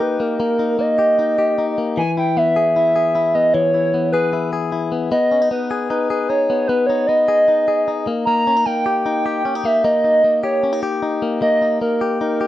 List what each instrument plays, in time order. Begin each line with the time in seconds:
Already playing: clean electric guitar A#3 G4
0.00 clean electric guitar D#4, soft synth lead B4
0.20 clean electric guitar A#3, soft synth lead A#4
0.40 clean electric guitar A#3
0.59 clean electric guitar D#4
0.79 clean electric guitar A#3, soft synth lead D#5
0.99 clean electric guitar G4
1.19 clean electric guitar D#4
1.38 clean electric guitar G4
1.58 clean electric guitar D#4
1.78 clean electric guitar A#3
1.97 clean electric guitar E3, soft synth lead G#5
2.17 clean electric guitar E4, soft synth lead G5
2.37 clean electric guitar B3, soft synth lead E5
2.56 clean electric guitar G#4
2.76 clean electric guitar E4, soft synth lead E5
2.96 clean electric guitar G#4
3.15 clean electric guitar E4
3.34 clean electric guitar B3, soft synth lead D#5
3.54 clean electric guitar E3, soft synth lead C#5
3.74 clean electric guitar E4
3.94 clean electric guitar B3
4.12 clean electric guitar G#4, soft synth lead B4
4.33 clean electric guitar E4
4.53 clean electric guitar G#4
4.72 clean electric guitar E4
4.92 clean electric guitar B3
5.11 clean electric guitar B3, soft synth lead D#5
5.32 clean electric guitar C#4
5.42 clean electric guitar D#4
5.51 clean electric guitar B3, soft synth lead B4
5.71 clean electric guitar G#4
5.90 clean electric guitar D#4, soft synth lead B4
6.10 clean electric guitar G#4, soft synth lead B4
6.29 clean electric guitar D#4, soft synth lead C#5
6.48 clean electric guitar B3, soft synth lead C#5
6.67 clean electric guitar B3, soft synth lead B4
6.87 clean electric guitar D#4, soft synth lead C#5
7.07 clean electric guitar B3, soft synth lead D#5
7.28 clean electric guitar G#4
7.48 clean electric guitar D#4
7.68 clean electric guitar G#4
7.88 clean electric guitar D#4
8.07 clean electric guitar A#3
8.25 clean electric guitar A#3, soft synth lead A#5
8.47 clean electric guitar C#4
8.57 clean electric guitar D#4
8.65 clean electric guitar A#3, soft synth lead G5
8.86 clean electric guitar G4
9.04 clean electric guitar D#4, soft synth lead G5
9.26 clean electric guitar G4
9.45 clean electric guitar C#4
9.55 clean electric guitar D#4
9.65 clean electric guitar A#3, soft synth lead E5
9.84 clean electric guitar A#3, soft synth lead D#5
10.04 clean electric guitar D#4
10.24 clean electric guitar A#3
10.44 clean electric guitar G4, soft synth lead C#5
10.63 clean electric guitar C#4
10.73 clean electric guitar D#4
10.83 clean electric guitar G4
11.02 clean electric guitar D#4
11.22 clean electric guitar A#3
11.42 clean electric guitar A#3, soft synth lead D#5
11.62 clean electric guitar D#4
11.81 clean electric guitar A#3, soft synth lead A#4
12.01 clean electric guitar G4
12.21 clean electric guitar D#4, soft synth lead A#4
12.41 clean electric guitar G4